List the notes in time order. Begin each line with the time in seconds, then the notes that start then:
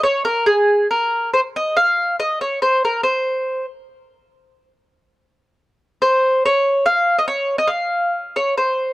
0.03 C#5
0.25 A#4
0.46 G#4
0.91 A#4
1.34 C5
1.56 D#5
1.77 F5
2.20 D#5
2.41 C#5
2.62 C5
2.85 A#4
3.03 C5
6.02 C5
6.45 C#5
6.86 F5
7.18 D#5
7.28 C#5
7.58 D#5
7.67 F5
8.36 C#5
8.57 C5